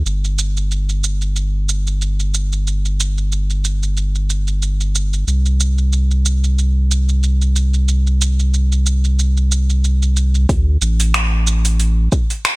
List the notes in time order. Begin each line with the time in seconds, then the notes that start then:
0.05 G1, shaker
0.24 shaker
0.38 shaker
0.57 shaker
0.71 shaker
0.89 shaker
1.04 shaker
1.22 shaker
1.36 shaker
1.69 shaker
1.87 shaker
2.02 shaker
2.20 shaker
2.34 shaker
2.52 shaker
2.67 shaker
2.85 shaker
3.00 shaker
3.18 shaker
3.32 shaker
3.50 shaker
3.64 shaker
3.83 shaker
3.97 shaker
4.15 shaker
4.30 shaker
4.47 shaker
4.62 shaker
4.81 shaker
4.95 shaker
5.13 shaker
5.27 C2, shaker
5.46 shaker
5.60 shaker
5.78 shaker
5.93 shaker
6.11 shaker
6.25 shaker
6.44 shaker
6.59 shaker
6.91 shaker
7.09 shaker
7.23 shaker
7.42 shaker
7.56 shaker
7.74 shaker
7.88 shaker
8.07 shaker
8.21 shaker
8.39 shaker
8.54 shaker
8.72 shaker
8.86 shaker
9.04 shaker
9.19 shaker
9.37 shaker
9.52 shaker
9.70 shaker
9.84 shaker
10.02 shaker
10.16 shaker
10.35 shaker
10.49 D2, kick, open hi-hat, shaker
10.81 A1, shaker
11.00 open hi-hat, shaker
11.14 finger snap, open hi-hat, shaker
11.47 shaker
11.65 open hi-hat, shaker
11.80 open hi-hat, shaker
12.12 kick, shaker
12.30 open hi-hat, shaker
12.45 finger snap, open hi-hat, shaker